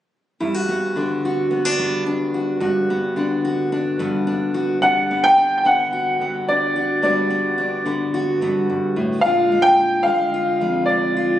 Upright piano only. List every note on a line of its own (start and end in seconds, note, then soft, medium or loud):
4.82 5.25 F#5 medium
5.24 5.56 G5 medium
5.58 5.65 G5 medium
5.66 6.44 F#5 medium
6.48 7.02 D5 medium
7.03 7.82 D5 medium
9.21 9.61 F5 medium
9.62 10.02 G5 loud
10.03 10.90 F5 medium
10.86 11.38 D5 medium